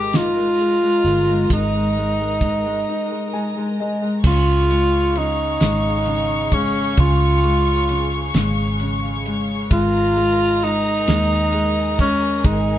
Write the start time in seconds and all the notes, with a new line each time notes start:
Already playing: G#1 G#3 G4 A#4 D#5 A#5
0.13 D#4 F4, snare, closed hi-hat
0.37 G#3
0.58 G#3, closed hi-hat
0.83 G#3
1.04 G1 G#3, closed hi-hat
1.29 G#3
1.50 G#1 G#3 D#4, kick, closed hi-hat
1.75 G#3
1.97 G#3, closed hi-hat
2.20 G#3
2.41 G#3, kick, closed hi-hat
2.66 G#3
2.89 D#4
3.11 G#3
3.33 G#3 G#5
3.56 G#3
3.80 G#3 D#5
4.02 G#3
4.23 C#2 C#3 F4 G#4 C#5 F5 C#6, kick, crash
4.69 G#3, ride
5.15 C#3 D#4, ride
5.60 G#1 G#3, snare, ride
6.06 C#3, ride
6.52 G#3 C#4, kick, ride
6.97 C#2 C#3 F4, kick, ride
7.44 G#3, ride
7.89 C#3, ride
8.34 G#1 G#3, snare, ride
8.80 C#3, ride
9.25 G#3, ride
9.71 G#1 G#3 F4 G#4 A#4 D#5 A#5, kick, ride
10.17 G#3, ride
10.62 G#3 D#4, ride
11.08 D#2 G#3, snare, ride
11.53 G#3, ride
11.99 G#3 C#4, kick, ride
12.44 G#1 G#3 D#4 G#5, kick, ride